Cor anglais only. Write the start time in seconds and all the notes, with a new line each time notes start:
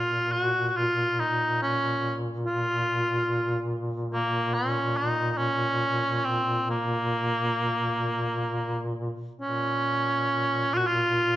Already playing: F4
0.32 F#4
0.68 F#4
0.77 F4
1.19 D#4
1.62 C#4
2.46 F4
4.13 A#3
4.54 C#4
4.96 D#4
5.31 D#4
5.38 C#4
6.25 C4
6.70 A#3
9.41 C#4
10.74 F4 F#4
10.87 F4